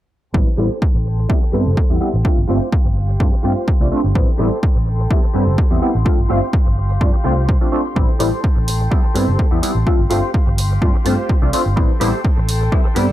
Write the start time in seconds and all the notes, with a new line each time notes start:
0.33 A1 G3 B3 C4 E4 A4 G5 C6, kick
0.57 A1 G3 B3 C4 E4 G4 A4 C5
0.71 tambourine
0.82 kick
0.94 A1, muted clean electric guitar stroke
1.05 muted clean electric guitar stroke
1.18 muted clean electric guitar stroke, tambourine
1.29 G3 B3 C4 E4, kick
1.41 muted clean electric guitar stroke
1.52 G2 G3 B3 C4 E4 G4 A4 C5
1.66 G1, tambourine
1.77 kick
1.90 E2 G3 B3 C4 E4
2.00 G3 B3 C4 E4
2.13 A1, muted clean electric guitar stroke, tambourine
2.25 A3 C4 D4 F4 G4 F5 C6, kick
2.37 G1
2.48 G1 A3 C4 D4 F4 G4 C5
2.62 tambourine
2.73 kick
2.84 G1, muted clean electric guitar stroke
2.95 muted clean electric guitar stroke
3.08 muted clean electric guitar stroke, tambourine
3.20 G2 A3 C4 D4 F4, kick
3.32 muted clean electric guitar stroke
3.43 G2 A3 C4 D4 F4 G4 C5
3.57 tambourine
3.68 kick
3.80 C2 A3 C4 D4 F4, tambourine
3.91 A3 C4 D4 F4, muted fingered electric bass stroke
4.03 G1, muted clean electric guitar stroke, tambourine
4.15 G3 B3 C4 E4 A4 G5, kick
4.38 A1 G3 B3 C4 E4 G4 A4 C5
4.52 tambourine
4.63 kick
4.74 A1, muted clean electric guitar stroke
4.86 muted clean electric guitar stroke
4.98 muted clean electric guitar stroke, tambourine
5.11 G3 B3 C4 E4, kick
5.22 muted clean electric guitar stroke
5.34 G2 G3 B3 C4 E4 G4 A4 C5
5.47 G1, tambourine
5.58 kick
5.70 E2 G3 B3 C4 E4, tambourine
5.82 G3 B3 C4 E4
5.94 A1, muted clean electric guitar stroke, tambourine
6.05 A3 C4 D4 F4 G4 F5, kick
6.19 G1
6.29 G1 A3 C4 D4 F4 G4 C5
6.42 tambourine
6.53 kick
6.65 G1, muted clean electric guitar stroke, tambourine
6.76 muted clean electric guitar stroke
6.89 muted clean electric guitar stroke, tambourine
7.01 G2 A3 C4 D4 F4, kick
7.13 muted clean electric guitar stroke
7.24 C2 A3 C4 D4 F4 G4 C5
7.37 tambourine
7.49 kick
7.61 A3 C4 D4 F4, tambourine
7.72 A3 C4 D4 F4
7.84 muted clean electric guitar stroke, tambourine
7.95 A1 G3 B3 C4 E4 A4 G5, kick
8.09 tambourine
8.19 A1 G3 B3 C4 E4 G4 A4 C5, open hi-hat
8.32 tambourine
8.44 kick
8.55 A1, muted clean electric guitar stroke, tambourine
8.66 muted clean electric guitar stroke, open hi-hat
8.79 muted clean electric guitar stroke, tambourine
8.91 G3 B3 C4 E4, kick
9.03 muted clean electric guitar stroke
9.14 G2 G3 B3 C4 E4 G4 A4 C5, open hi-hat
9.27 G1, tambourine
9.39 kick
9.51 E2 G3 B3 C4 E4, tambourine
9.62 G3 B3 C4 E4, open hi-hat
9.75 A1, muted clean electric guitar stroke, tambourine
9.86 A3 C4 D4 F4 G4 F5, kick
9.99 G1, tambourine
10.10 G1 A3 C4 D4 F4 G4 C5, open hi-hat
10.23 tambourine
10.34 kick
10.46 G1, muted clean electric guitar stroke, tambourine
10.57 muted clean electric guitar stroke, open hi-hat
10.70 muted clean electric guitar stroke, tambourine
10.81 G2 A3 C4 D4 F4, kick
10.94 muted clean electric guitar stroke, tambourine
11.05 G2 A3 C4 D4 F4 G4 C5, open hi-hat
11.18 tambourine
11.29 kick
11.42 C2 A3 C4 D4 F4, tambourine
11.53 A3 C4 D4 F4, muted fingered electric bass stroke, open hi-hat
11.65 G1, muted clean electric guitar stroke, tambourine
11.76 A1 G3 B3 C4 E4 A4 G5, kick
11.89 tambourine
12.00 A1 G3 B3 C4 E4 G4 A4 C5, open hi-hat
12.13 tambourine
12.25 kick
12.36 A1, muted clean electric guitar stroke, tambourine
12.47 muted clean electric guitar stroke, open hi-hat
12.60 muted clean electric guitar stroke, tambourine
12.72 G3 B3 C4 E4, kick
12.84 muted clean electric guitar stroke, tambourine
12.95 G2 G3 B3 C4 E4 G4 A4 D5, open hi-hat
13.08 G1, tambourine